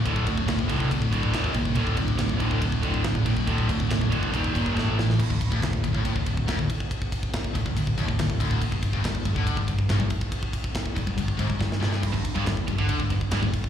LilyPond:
<<
  \new Staff \with { instrumentName = "Distorted electric guitar" } { \clef bass \time 4/4 \tempo 4 = 140 <d, a, d>8 <d, a,>8 <d, a,>8 <d, a, d>8 <d, a,>8 <d, a, d>8 <ees, bes, ees>8 <ees, bes,>8 | <d, a, d>8 <d, a,>8 <d, a,>8 <d, a, d>8 <d, a,>8 <d, a, d>8 <d, a,>8 <d, a,>8 | <d, a, d>8 <d, a,>8 <d, a,>8 <d, a, d>8 <ees, bes, ees>8 <ees, bes, ees>8 <a, e a>8 <a, e>8 | r1 |
r1 | r1 | r1 | r16 g,8 g,16 g,8 g,16 d8 g,16 g,8 g,16 g,16 r8 | }
  \new Staff \with { instrumentName = "Distorted electric guitar" } { \clef bass \time 4/4 <d, a, d>8 <d, a,>8 <d, a,>8 <d, a, d>8 <d, a,>8 <d, a, d>8 <ees, bes, ees>8 <ees, bes,>8 | <d, a, d>8 <d, a,>8 <d, a,>8 <d, a, d>8 <d, a,>8 <d, a, d>8 <d, a,>8 <d, a,>8 | <d, a, d>8 <d, a,>8 <d, a,>8 <d, a, d>8 <ees, bes, ees>8 <ees, bes, ees>8 <a, e a>8 <a, e>8 | r16 d,8 d,16 d,8 d,16 a,8 d,16 d,8 d,16 d,16 r8 |
r4. d,16 d,16 d,8 ees,16 d,16 d,8 d,8 | r16 g,8 g,16 g,8 g,16 d8 g,16 g,8 g,16 g,16 r8 | r4. g,16 g,16 g,8 gis,16 g,16 g,8 g,8 | r16 g,8 g,16 g,8 g,16 d8 g,16 g,8 g,16 g,16 r8 | }
  \new Staff \with { instrumentName = "Distorted electric guitar" } { \clef bass \time 4/4 <d, a, d>2. <ees, bes, ees>4 | <d, a, d>2.~ <d, a, d>8 <d, a, d>8 | <d, a, d>2 <ees, bes, ees>4 <a, e a>4 | r16 d,8 d,16 d,8 d,16 a,8 d,16 d,8 d,16 d,16 r8 |
r4. d,16 d,16 d,8 ees,16 d,16 d,8 d,8 | r16 g,8 g,16 g,8 g,16 d8 g,16 g,8 g,16 g,16 r8 | r4. g,16 g,16 g,8 gis,16 g,16 g,8 g,8 | r16 g,8 g,16 g,8 g,16 d8 g,16 g,8 g,16 g,16 r8 | }
  \new Staff \with { instrumentName = "Picked electric bass" } { \clef bass \time 4/4 d,,8 d,,8 d,,8 c,8 d,8 d,,8 ees,,8 c,8 | d,,8 d,,8 d,,8 d,,8 d,,8 d,,8 d,,8 a,,8 | d,,8 d,,8 d,,8 fis,,8 ees,,8 g,,8 a,,8 a,,8 | r16 d,,8 d,,16 d,,8 d,,16 a,,8 d,,16 d,,8 d,,16 d,,16 r8 |
r4. d,,16 d,,16 d,,8 ees,,16 d,,16 d,,8 d,,8 | r16 g,,8 g,,16 g,,8 g,,16 d,8 g,,16 g,,8 g,,16 g,,16 r8 | r4. g,,16 g,,16 g,,8 gis,,16 g,,16 g,,8 g,,8 | r16 g,,8 g,,16 g,,8 g,,16 d,8 g,,16 g,,8 g,,16 g,,16 r8 | }
  \new DrumStaff \with { instrumentName = "Drums" } \drummode { \time 4/4 <bd cymr>16 bd16 <bd cymr>16 bd16 <bd cymr sn>16 bd16 <bd cymr>16 bd16 <bd cymr>16 bd16 <bd cymr>16 bd16 <bd cymr sn>16 bd16 <bd cymr>16 bd16 | <bd cymr>16 bd16 <bd cymr>16 bd16 <bd cymr sn>16 bd16 <bd cymr>16 bd16 <bd cymr>16 bd16 <bd cymr>16 bd16 <bd cymr sn>16 bd16 <bd cymr>16 bd16 | <bd cymr>16 bd16 <bd cymr>16 bd16 <bd cymr sn>16 bd16 <bd cymr>16 bd16 <bd cymr>16 bd16 <bd cymr>16 bd16 <bd sn>8 sn16 sn16 | <cymc bd>16 bd16 <bd cymr>16 bd16 <bd cymr sn>16 bd16 <bd cymr>16 bd16 <bd cymr>16 bd16 <bd cymr>16 bd16 <bd cymr sn>16 bd16 <bd cymr>16 bd16 |
<bd cymr>16 bd16 <bd cymr>16 bd16 <bd cymr sn>16 bd16 <bd cymr>16 bd16 <bd cymr>16 bd16 <bd cymr>16 bd16 <bd cymr sn>16 bd16 <bd cymr>16 bd16 | <bd cymr>16 bd16 <bd cymr>16 bd16 <bd cymr sn>16 bd16 <bd cymr>16 bd16 <bd cymr>16 bd16 <bd cymr>16 bd16 <bd cymr sn>16 bd16 <bd cymr>16 bd16 | <bd cymr>16 bd16 <bd cymr>16 bd16 <bd cymr sn>16 bd16 <bd cymr>16 bd16 <bd cymr>16 bd16 <bd cymr>16 bd16 <bd sn>16 sn16 sn16 sn16 | <cymc bd cymr>16 bd16 <bd cymr>16 bd16 <bd cymr sn>16 bd16 <bd cymr>16 bd16 <bd cymr>16 bd16 <bd cymr>16 bd16 <bd cymr sn>16 bd16 <bd cymr>16 bd16 | }
>>